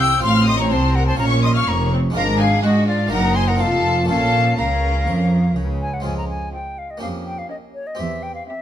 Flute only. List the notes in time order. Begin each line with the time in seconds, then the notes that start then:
0.00 E6
0.23 C6
0.47 C6
0.59 A#5
0.71 A5
0.95 F#5
1.07 A5
1.19 A#5
1.43 C6
1.56 C#6
1.68 A#5
2.16 F5
2.40 F5
2.64 D#5
2.88 D5
3.12 F#5
3.36 G#5
3.48 F#5
3.60 F5
4.09 F5
4.58 F5
5.81 G#5
5.94 F#5
6.05 G#5
6.18 A#5
6.29 G#5
6.53 G5
6.78 F5
6.91 D#5
7.01 F5
7.26 G5
7.38 F5
7.50 D#5
7.74 C#5
7.87 D#5
7.99 E5
8.23 G5
8.35 F5
8.47 E5